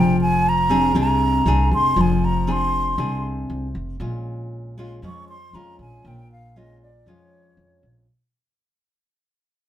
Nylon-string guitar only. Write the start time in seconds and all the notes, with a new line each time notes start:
Already playing: F3 C4 D4 G#4
0.69 C4 D4 G#4
0.95 C3 C4 D4 G#4
1.47 C4 D4 G#4
1.97 F3
2.47 C4 D4 G#4
2.98 C3 C4 D4 G#4
4.00 A#2 G#3 C#4 F4
4.78 G#3 C#4 F4
5.03 F2 G#3 C#4 F4
5.54 G#3 C#4 F4
6.05 A#2
6.56 G#3 C#4 F4
7.07 F2 G#3 C#4 F4